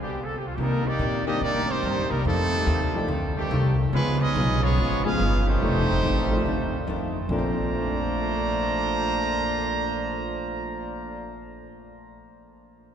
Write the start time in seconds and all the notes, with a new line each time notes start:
0.01 B2 D3 G3 B3 D4 G4
0.24 A4
0.37 G4
0.47 F4
0.55 C3 D#3 G3 A#3 G4
0.59 D#3 G3 A#3 D4 D#4 A#4
0.84 G3 A#3 D#4 G4 D5
0.99 A#2 C3 D#3 A#3 D4
1.26 D#3 G3 A#3 C4 D4 D#4 G4 D#5
1.41 A2 C3 D#3 G3 A#3 D4 D#4 G4 D5
1.46 D4
1.68 D#3 G3 A#3 C4 D#4 G4 C5
1.83 G2 C3 D#3 A#3 D4
1.98 D#2
2.09 C2 D#3 G3 A#3 D4 D#4 A#4
2.25 F2 C3 D#3 G3 A3 C4 D#4 A4
2.29 D4
2.66 D#2 F2 D#3 A3 D4
2.95 F3 A3 D4 D#4 G4
3.08 D2 F2 D#3 A3 D4
3.35 C3 D#3 G3 A3 C4 G4
3.51 C2 F2 D#3 A3 D4
3.91 C#2 C#3 F3 G#3 B3 C#4 F4 B4
3.97 B3 F4
4.20 G#3 B3 C#4 D#4 G#4 B4 D#5
4.36 B1 C#3 G#3 B3 F4
4.60 F3 G#3 B3 C#4 F4 G#4 C#5
4.78 G#1 C#3 G#3 B3 F4
5.04 F3 G#3 B3 C#4 F4 G#4 B4 F5
5.19 G1 C#3 G#3 B3 F4
5.46 A3 C4 D#4 G4 C5
5.61 F1 F2 D#3 F3 A3 D4 D#4 G4
5.66 A3 D4
6.03 A1 F2 D#3 A3 D4
6.31 F3 A3 D4 D#4 F4
6.45 D2 F2 D#3 A3 D4
6.87 F2 D#3 A3 D4
7.29 A#1 A#2 F3 A3 C4 D4 F4 C5 D5 A#5
7.38 C5